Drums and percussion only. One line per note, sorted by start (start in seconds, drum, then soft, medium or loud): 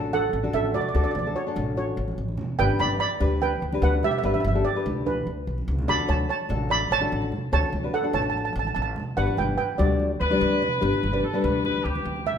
0.13 high conga medium
0.44 high conga medium
0.65 high conga medium
0.74 low conga medium
1.05 high conga medium
1.15 high conga medium
1.15 low conga medium
1.56 low conga medium
1.77 high conga medium
2.08 high conga medium
2.28 high conga medium
2.37 low conga medium
2.69 high conga medium
2.79 high conga medium
2.79 low conga medium
3.20 low conga medium
3.41 high conga medium
3.72 high conga medium
3.93 high conga medium
4.03 low conga medium
4.35 high conga medium
4.45 high conga medium
4.45 low conga medium
4.86 low conga medium
5.07 high conga medium
5.07 low conga medium
5.47 high conga medium
5.58 high conga medium
5.68 low conga medium
5.78 low conga medium
5.99 high conga medium
6.08 high conga medium
6.08 low conga medium
6.49 low conga medium
6.69 high conga medium
7.01 high conga medium
7.22 high conga medium
7.32 low conga medium
7.63 high conga medium
7.72 high conga medium
7.72 low conga medium
8.14 low conga medium
8.33 high conga medium
8.65 high conga medium
8.96 low conga medium
9.27 high conga medium
9.37 high conga medium
9.37 low conga medium
9.79 low conga medium
10.00 high conga medium
10.31 high conga medium
10.52 high conga medium
10.62 low conga medium
10.94 high conga medium
11.04 high conga medium
11.04 low conga medium
11.44 low conga medium
11.65 high conga medium
11.65 low conga medium
11.95 high conga medium
12.16 high conga medium
12.26 low conga medium